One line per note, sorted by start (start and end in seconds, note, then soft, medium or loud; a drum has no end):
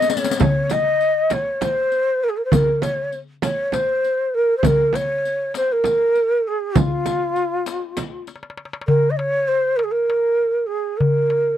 0.00 0.12 D#5 loud
0.00 riq medium
0.10 0.40 C#5 medium
0.10 riq medium
0.10 darbuka tek medium
0.17 riq medium
0.24 riq medium
0.24 darbuka ka medium
0.31 riq medium
0.40 0.74 C#5 loud
0.40 riq medium
0.40 frame drum loud
0.40 darbuka dum loud
0.70 1.35 D#5 loud
0.70 riq soft
0.70 darbuka tek medium
0.70 frame drum medium
1.01 riq soft
1.30 1.64 C#5 medium
1.30 riq medium
1.30 darbuka tek medium
1.30 frame drum medium
1.61 2.25 C5 loud
1.61 riq medium
1.61 darbuka tek medium
1.61 frame drum medium
1.92 riq soft
2.24 2.31 A#4 medium
2.29 2.39 G#4 medium
2.37 2.44 A#4 medium
2.45 2.53 C5 medium
2.52 2.83 A#4 loud
2.52 riq medium
2.52 frame drum medium
2.52 darbuka dum medium
2.82 3.16 C#5 medium
2.82 riq medium
2.82 darbuka tek medium
2.82 frame drum medium
3.12 riq soft
3.42 3.75 C#5 medium
3.42 riq soft
3.42 darbuka tek medium
3.42 frame drum medium
3.72 4.36 C5 medium
3.72 riq soft
3.72 darbuka tek medium
3.72 frame drum medium
4.04 riq soft
4.34 4.57 A#4 medium
4.57 4.67 C5 medium
4.63 4.97 A#4 medium
4.63 riq medium
4.63 frame drum medium
4.63 darbuka dum medium
4.93 5.55 C#5 loud
4.93 riq soft
4.93 darbuka tek medium
4.93 frame drum medium
5.25 riq soft
5.54 5.74 C5 medium
5.54 riq soft
5.54 darbuka tek medium
5.72 6.49 A#4 medium
5.84 riq soft
5.84 darbuka tek medium
5.84 frame drum medium
6.15 riq soft
6.48 6.78 G#4 medium
6.75 8.27 F4 medium
6.75 riq medium
6.75 frame drum loud
6.75 darbuka dum medium
7.06 riq soft
7.06 darbuka tek medium
7.06 frame drum medium
7.36 riq soft
7.36 darbuka ka soft
7.66 riq medium
7.66 darbuka tek medium
7.97 riq soft
7.97 darbuka tek medium
7.97 frame drum medium
8.27 riq soft
8.27 darbuka tek medium
8.36 darbuka ka medium
8.43 darbuka tek medium
8.50 darbuka ka medium
8.57 darbuka tek medium
8.65 darbuka ka medium
8.73 darbuka tek medium
8.81 darbuka ka medium
8.87 9.12 A#4 medium
8.87 darbuka dum loud
9.10 9.18 D#5 medium
9.17 9.49 C#5 medium
9.17 darbuka tek medium
9.48 9.78 C5 medium
9.76 9.85 A#4 medium
9.76 darbuka tek medium
9.84 9.93 G#4 medium
9.91 10.68 A#4 medium
10.10 darbuka tek medium
10.40 darbuka ka soft
10.67 10.99 G#4 medium
10.97 11.57 A#4 medium
10.97 darbuka dum medium
11.30 darbuka tek medium